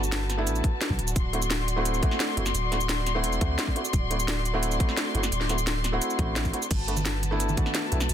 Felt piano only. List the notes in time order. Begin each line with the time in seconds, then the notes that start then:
0.37 A3 B3 D4 E4
1.33 A3 C4 E4 F#4
1.76 A3 C4 E4 F#4
2.02 A3 C4 E4 F#4
2.37 A3 C4 E4 F#4
2.71 A3 C4 E4 F#4
3.15 A3 C4 E4 F#4
3.41 A3 C4 E4 F#4
3.75 A3 C4 E4 F#4
4.10 A3 C4 E4 F#4
4.54 A3 C4 E4 F#4
4.79 A3 C4 E4 F#4
5.14 A3 C4 E4 F#4
5.49 A3 C4 E4 F#4
5.92 A3 C4 E4 F#4
6.18 A3 C4 E4 F#4
6.53 A3 C4 E4 F#4
6.88 A3 B3 D4 F#4
7.31 A3 B3 D4 E4
7.57 A3 B3 D4 F#4
7.92 A3 B3 D4 E4